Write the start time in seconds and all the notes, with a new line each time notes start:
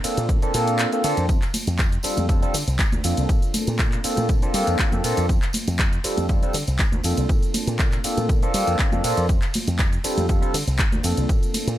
0.04 A#3 C4 D4 F4 A4, muted slap bass stroke, open hi-hat, ride, shaker
0.17 A#2, closed hi-hat, shaker
0.29 kick, closed hi-hat, shaker
0.42 A#3 C4 D4 F4 A4, muted slap bass stroke, closed hi-hat, shaker
0.54 A#2 A#3 C4 D4 F4 A4, open hi-hat, ride, shaker
0.68 closed hi-hat, shaker
0.79 clap, closed hi-hat, shaker
0.92 A#3 C4 D4 F4 A4, closed hi-hat, shaker
1.04 D3 A#3 C4 D4 F4 A4, open hi-hat, ride, shaker
1.17 F2, closed hi-hat, shaker
1.29 F2, kick, closed hi-hat, tambourine, shaker
1.42 clap, closed hi-hat, tambourine, shaker
1.54 open hi-hat, ride, tambourine, high conga, shaker
1.67 F2, closed hi-hat, tambourine, shaker
1.79 kick, clap, closed hi-hat, tambourine, shaker
1.92 closed hi-hat, shaker
2.03 G3 C4 D4 F4 A4, muted slap bass stroke, open hi-hat, ride, tambourine, shaker
2.17 F2, closed hi-hat, tambourine, high conga, shaker
2.29 G3 C4 D4 F4 A4, kick, closed hi-hat, tambourine, shaker
2.42 G3 C4 D4 F4 A4, muted slap bass stroke, closed hi-hat, shaker
2.54 D3, open hi-hat, ride, tambourine, shaker
2.67 C2, closed hi-hat, tambourine, shaker
2.79 kick, clap, closed hi-hat, tambourine, shaker
2.92 D2, closed hi-hat, high conga, shaker
3.04 F2 A#3 C4 D4 F4 A4, open hi-hat, ride, tambourine, shaker
3.17 C2, closed hi-hat, tambourine, shaker
3.29 A#2, kick, closed hi-hat, tambourine, shaker
3.42 closed hi-hat, tambourine, shaker
3.54 open hi-hat, ride, tambourine, high conga, shaker
3.67 A#2, closed hi-hat, tambourine, shaker
3.79 kick, clap, closed hi-hat, tambourine, shaker
3.92 clap, closed hi-hat, shaker
4.04 A#3 C4 D4 F4 A4, muted slap bass stroke, open hi-hat, ride, tambourine, shaker
4.17 A#2, closed hi-hat, tambourine, high conga, shaker
4.29 kick, closed hi-hat, tambourine, shaker
4.42 A#3 C4 D4 F4 A4, muted slap bass stroke, closed hi-hat, shaker
4.54 G3 A#3 C4 D4 F4 A4, open hi-hat, ride, tambourine, shaker
4.67 F2, closed hi-hat, tambourine, shaker
4.79 kick, clap, closed hi-hat, tambourine, shaker
4.92 F2 A#3 C4 D4 F4 A4, closed hi-hat, high conga, shaker
5.04 A#2 A#3 C4 D4 F4 A4, open hi-hat, ride, tambourine, shaker
5.17 F2, closed hi-hat, tambourine, shaker
5.29 F2, kick, closed hi-hat, tambourine, shaker
5.42 clap, closed hi-hat, tambourine, shaker
5.53 open hi-hat, ride, tambourine, high conga, shaker
5.67 F2, closed hi-hat, tambourine, shaker
5.79 kick, clap, closed hi-hat, tambourine, shaker
5.93 closed hi-hat, shaker
6.04 G3 C4 D4 F4 A4, muted slap bass stroke, open hi-hat, ride, tambourine, shaker
6.17 F2, closed hi-hat, tambourine, high conga, shaker
6.29 G3 C4 D4 F4 A4, kick, closed hi-hat, tambourine, shaker
6.42 G3 C4 D4 F4 A4, muted slap bass stroke, closed hi-hat, shaker
6.53 D3, open hi-hat, ride, tambourine, shaker
6.67 C2, closed hi-hat, tambourine, shaker
6.79 kick, clap, closed hi-hat, tambourine, shaker
6.92 D2, closed hi-hat, high conga, shaker
7.03 F2 A#3 C4 D4 F4 A4, open hi-hat, ride, tambourine, shaker
7.17 C2, closed hi-hat, tambourine, shaker
7.29 A#2, kick, closed hi-hat, tambourine, shaker
7.43 closed hi-hat, tambourine, shaker
7.54 open hi-hat, ride, tambourine, high conga, shaker
7.67 A#2, closed hi-hat, tambourine, shaker
7.79 kick, clap, closed hi-hat, tambourine, shaker
7.92 clap, closed hi-hat, tambourine, shaker
8.04 A#3 C4 D4 F4 A4, muted slap bass stroke, open hi-hat, ride, tambourine, shaker
8.17 A#2, closed hi-hat, tambourine, high conga, shaker
8.29 kick, closed hi-hat, tambourine, shaker
8.42 A#3 C4 D4 F4 A4, muted slap bass stroke, closed hi-hat, shaker
8.54 G3 A#3 C4 D4 F4 A4, open hi-hat, ride, tambourine, shaker
8.67 F2, closed hi-hat, tambourine, shaker
8.79 muted slap bass stroke, kick, clap, closed hi-hat, tambourine, shaker
8.92 F2 A#3 C4 D4 F4 A4, closed hi-hat, high conga, shaker
9.04 A#2 A#3 C4 D4 F4 A4, open hi-hat, ride, tambourine, shaker
9.17 F2, closed hi-hat, tambourine, shaker
9.29 kick, closed hi-hat, tambourine, shaker
9.42 clap, closed hi-hat, tambourine, shaker
9.54 open hi-hat, ride, tambourine, high conga, shaker
9.67 F2, closed hi-hat, tambourine, shaker
9.79 kick, clap, closed hi-hat, tambourine, shaker
9.93 closed hi-hat, shaker
10.04 G3 C4 D4 F4 A4, muted slap bass stroke, open hi-hat, ride, tambourine, shaker
10.17 F2, closed hi-hat, tambourine, high conga, shaker
10.29 G3 C4 D4 F4 A4, kick, closed hi-hat, tambourine, shaker
10.42 G3 C4 D4 F4 A4, muted slap bass stroke, closed hi-hat, shaker
10.54 D3, open hi-hat, ride, tambourine, shaker
10.67 C2, closed hi-hat, tambourine, shaker
10.79 kick, clap, closed hi-hat, tambourine, shaker
10.92 D2, closed hi-hat, high conga, shaker
11.03 F2 A#3 C4 D4 F4 A4, open hi-hat, ride, tambourine, shaker
11.17 C2, closed hi-hat, tambourine, shaker
11.29 A#2, kick, closed hi-hat, tambourine, shaker
11.43 closed hi-hat, tambourine, shaker
11.54 open hi-hat, ride, tambourine, high conga, shaker
11.67 A#2, closed hi-hat, tambourine, shaker